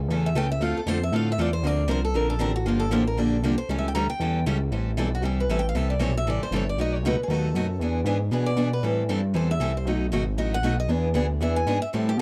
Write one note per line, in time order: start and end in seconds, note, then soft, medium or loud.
0.08 0.34 E2 loud
0.08 0.28 C#3 medium
0.08 0.28 E3 medium
0.08 0.28 A3 medium
0.08 0.28 C#4 medium
0.08 0.29 A4 medium
0.26 0.36 E5 medium
0.35 0.60 C#2 medium
0.35 0.46 C#3 medium
0.35 0.46 E3 medium
0.35 0.46 A3 medium
0.35 0.46 C#4 medium
0.35 0.46 A4 loud
0.35 0.51 G5 loud
0.52 0.62 E5 medium
0.60 0.74 D2 medium
0.60 0.79 D3 medium
0.60 0.79 A3 medium
0.60 0.79 C4 medium
0.60 0.80 F4 medium
0.60 0.80 A4 medium
0.60 0.76 F5 medium
0.75 0.81 D2 soft
0.75 0.88 A4 medium
0.86 1.11 F2 loud
0.86 0.97 D3 medium
0.86 0.97 A3 loud
0.86 0.97 C4 loud
0.86 0.97 F4 medium
0.86 0.98 A4 medium
0.86 1.02 C5 medium
1.03 1.13 E5 medium
1.12 1.37 A2 medium
1.12 1.31 D3 medium
1.12 1.31 A3 medium
1.12 1.31 C4 medium
1.12 1.31 F4 medium
1.12 1.31 A4 medium
1.12 1.28 F5 medium
1.32 1.40 E5 loud
1.38 1.62 E2 medium
1.38 1.48 D3 medium
1.38 1.49 A3 medium
1.38 1.49 C4 medium
1.38 1.49 F4 medium
1.38 1.49 A4 medium
1.38 1.53 D5 medium
1.53 1.67 C5 medium
1.63 1.87 D2 loud
1.63 1.82 D3 medium
1.63 1.82 F3 medium
1.63 1.82 C4 medium
1.63 1.82 D4 medium
1.63 1.83 A#4 medium
1.63 1.91 D5 loud
1.88 2.13 C2 medium
1.88 1.99 D3 medium
1.88 1.99 F3 loud
1.88 1.99 C4 loud
1.88 1.99 D4 loud
1.88 1.99 A#4 loud
1.88 2.04 C5 medium
2.05 2.17 A4 medium
2.14 2.40 A#1 loud
2.14 2.33 D3 medium
2.14 2.33 F3 medium
2.14 2.33 C4 medium
2.14 2.33 D4 medium
2.14 2.33 A#4 medium
2.14 2.29 A#4 medium
2.30 2.40 A4 loud
2.39 2.65 A1 medium
2.39 2.50 D3 medium
2.39 2.50 F3 medium
2.39 2.50 C4 loud
2.39 2.51 D4 loud
2.39 2.55 G4 medium
2.39 2.51 A#4 loud
2.56 2.66 F#4 medium
2.66 2.90 G1 loud
2.66 2.84 D3 medium
2.66 2.84 F3 medium
2.66 2.84 A#3 medium
2.66 2.84 D4 medium
2.66 2.82 F4 medium
2.66 2.85 G4 medium
2.80 2.91 A4 loud
2.90 3.16 A1 loud
2.90 3.02 D3 medium
2.90 3.02 F3 medium
2.90 3.02 A#3 loud
2.90 3.03 D4 loud
2.90 3.02 G4 loud
2.90 3.06 C5 loud
3.07 3.18 A#4 medium
3.16 3.42 A#1 medium
3.16 3.36 D3 medium
3.16 3.36 F3 medium
3.16 3.36 A#3 medium
3.16 3.36 D4 medium
3.16 3.36 G4 medium
3.16 3.44 A4 medium
3.43 3.57 C2 medium
3.43 3.54 D3 medium
3.43 3.54 F3 medium
3.43 3.54 A#3 medium
3.43 3.54 D4 loud
3.43 3.54 G4 loud
3.58 3.64 C2 soft
3.58 3.69 C5 loud
3.69 3.94 C#2 medium
3.69 3.87 E3 medium
3.69 3.87 G3 medium
3.69 3.87 C#4 medium
3.69 3.88 E4 medium
3.69 3.88 A4 medium
3.69 3.78 C#5 medium
3.79 3.86 E5 medium
3.88 3.94 G5 medium
3.95 4.08 D2 loud
3.95 4.05 E3 loud
3.95 4.05 G3 loud
3.95 4.06 C#4 loud
3.95 4.05 E4 loud
3.95 4.05 A4 medium
3.95 4.09 A#5 loud
4.09 4.15 D2 soft
4.09 4.44 G5 loud
4.19 4.45 E2 medium
4.19 4.39 E3 medium
4.19 4.39 G3 medium
4.19 4.39 C#4 medium
4.19 4.39 E4 medium
4.19 4.39 A4 medium
4.46 4.71 C#2 medium
4.46 4.56 E3 medium
4.46 4.57 G3 medium
4.46 4.57 C#4 loud
4.46 4.57 E4 loud
4.46 4.57 A4 loud
4.71 4.97 A1 medium
4.71 4.90 E3 medium
4.71 4.90 G3 medium
4.71 4.90 C4 medium
4.71 4.90 E4 medium
4.71 4.90 A4 medium
4.97 5.21 B1 medium
4.97 5.08 E3 medium
4.97 5.08 G3 medium
4.97 5.08 C4 medium
4.97 5.08 E4 loud
4.97 5.09 A4 medium
5.15 5.24 F#4 medium
5.21 5.47 C2 medium
5.21 5.41 E3 medium
5.21 5.41 G3 medium
5.21 5.42 C4 medium
5.21 5.42 E4 medium
5.21 5.39 G4 medium
5.21 5.42 A4 medium
5.40 5.50 B4 medium
5.48 5.74 A1 medium
5.48 5.60 E3 medium
5.48 5.60 G3 medium
5.48 5.60 C4 medium
5.48 5.60 E4 medium
5.48 5.60 A4 medium
5.48 5.58 E5 medium
5.59 5.67 G5 medium
5.69 5.76 F5 medium
5.75 5.99 C2 medium
5.75 5.93 C3 medium
5.75 5.93 E3 medium
5.75 5.93 G3 medium
5.75 5.93 C4 medium
5.75 5.93 E4 medium
5.75 5.93 A4 medium
5.75 5.90 E5 medium
5.90 6.00 D5 medium
5.99 6.24 B1 loud
5.99 6.10 C3 medium
5.99 6.11 E3 medium
5.99 6.10 G3 medium
5.99 6.11 C4 loud
5.99 6.11 E4 medium
5.99 6.11 A4 medium
5.99 6.15 C#5 medium
6.17 6.27 E5 loud
6.25 6.39 A1 medium
6.25 6.45 C3 medium
6.25 6.45 E3 medium
6.25 6.45 G3 medium
6.25 6.45 C4 medium
6.25 6.45 E4 medium
6.25 6.45 A4 medium
6.30 6.42 D5 medium
6.41 6.46 A1 soft
6.41 6.53 C5 medium
6.51 6.76 G1 medium
6.51 6.62 C3 medium
6.51 6.62 E3 medium
6.51 6.63 G3 medium
6.51 6.63 C4 medium
6.51 6.63 E4 medium
6.51 6.63 A4 medium
6.56 6.68 C#5 medium
6.69 6.79 D5 medium
6.77 7.03 B1 loud
6.77 6.96 B2 medium
6.77 6.96 F#3 medium
6.77 6.97 A3 medium
6.77 6.97 D#4 medium
6.77 6.97 F#4 medium
6.77 6.95 D#5 medium
6.95 7.05 C#5 medium
7.03 7.17 C#2 loud
7.03 7.15 B2 medium
7.03 7.15 F#3 loud
7.03 7.15 A3 loud
7.03 7.15 D#4 loud
7.03 7.15 F#4 loud
7.07 7.20 B4 medium
7.18 7.24 C#2 soft
7.23 7.33 A#4 medium
7.28 7.53 D#2 medium
7.28 7.48 B2 medium
7.28 7.48 F#3 medium
7.28 7.48 A3 medium
7.28 7.48 D#4 medium
7.28 7.48 F#4 medium
7.33 7.83 A4 medium
7.55 7.79 F#2 medium
7.55 7.65 B2 medium
7.55 7.66 F#3 medium
7.55 7.66 A3 medium
7.55 7.66 D#4 medium
7.55 7.66 F#4 loud
7.79 8.04 E2 medium
7.79 7.99 E3 medium
7.79 8.00 B3 medium
7.79 8.00 D4 medium
7.79 8.00 G#4 medium
8.04 8.30 G#2 loud
8.04 8.16 E3 medium
8.04 8.17 B3 loud
8.04 8.17 D4 medium
8.04 8.17 G#4 medium
8.31 8.56 B2 loud
8.31 8.50 E3 medium
8.31 8.50 B3 medium
8.31 8.50 D4 medium
8.31 8.51 G#4 medium
8.31 8.46 B4 medium
8.46 8.70 D5 medium
8.56 8.82 B2 medium
8.56 8.68 E3 medium
8.56 8.68 B3 medium
8.56 8.68 D4 medium
8.56 8.68 G#4 medium
8.73 8.84 B4 medium
8.83 9.08 A2 medium
8.83 9.02 E3 medium
8.83 9.02 G3 medium
8.83 9.02 C4 medium
8.83 9.02 E4 medium
8.83 9.02 A4 medium
9.09 9.34 G2 medium
9.09 9.19 E3 medium
9.09 9.20 G3 medium
9.09 9.20 C4 medium
9.09 9.20 E4 loud
9.09 9.20 A4 medium
9.34 9.59 E2 loud
9.34 9.53 E3 medium
9.34 9.53 G3 medium
9.34 9.53 C4 medium
9.34 9.53 E4 medium
9.34 9.53 A4 medium
9.34 9.50 C5 medium
9.51 9.74 E5 loud
9.60 9.85 C2 medium
9.60 9.71 E3 medium
9.60 9.71 G3 medium
9.60 9.71 C4 medium
9.60 9.71 E4 loud
9.60 9.71 A4 loud
9.77 9.87 C5 medium
9.85 10.11 B1 loud
9.85 10.05 B2 medium
9.85 10.05 F#3 medium
9.85 10.05 A3 medium
9.85 10.05 D#4 medium
9.85 10.05 F#4 medium
10.12 10.36 G#1 loud
10.12 10.22 B2 medium
10.12 10.23 F#3 medium
10.12 10.23 A3 medium
10.12 10.23 D#4 loud
10.12 10.23 F#4 loud
10.37 10.62 A1 medium
10.37 10.56 B2 medium
10.37 10.56 F#3 medium
10.37 10.56 A3 medium
10.37 10.57 D#4 medium
10.37 10.57 F#4 medium
10.37 10.52 D#5 medium
10.54 10.77 F#5 loud
10.63 10.88 B1 medium
10.63 10.74 B2 medium
10.63 10.74 F#3 medium
10.63 10.74 A3 loud
10.63 10.74 D#4 loud
10.63 10.74 F#4 loud
10.80 10.90 D#5 loud
10.89 11.14 E2 medium
10.89 11.07 E3 medium
10.89 11.07 B3 medium
10.89 11.08 D4 medium
10.89 11.08 G#4 medium
11.14 11.40 D2 loud
11.14 11.25 E3 medium
11.14 11.25 B3 loud
11.14 11.25 D4 loud
11.14 11.26 G#4 loud
11.40 11.65 E2 medium
11.40 11.59 E3 medium
11.40 11.59 B3 medium
11.40 11.59 D4 medium
11.40 11.59 G#4 medium
11.40 11.56 E5 medium
11.56 11.80 G#5 loud
11.67 11.80 G#2 medium
11.67 11.77 E3 medium
11.67 11.77 B3 medium
11.67 11.77 D4 loud
11.67 11.77 G#4 medium
11.82 11.87 G#2 soft
11.82 11.88 E5 loud
11.93 12.17 A2 loud
11.93 12.11 E3 medium
11.93 12.11 G3 medium
11.93 12.11 C4 medium
11.93 12.11 E4 medium
11.93 12.12 A4 medium
12.09 12.19 G4 medium
12.17 12.21 B2 loud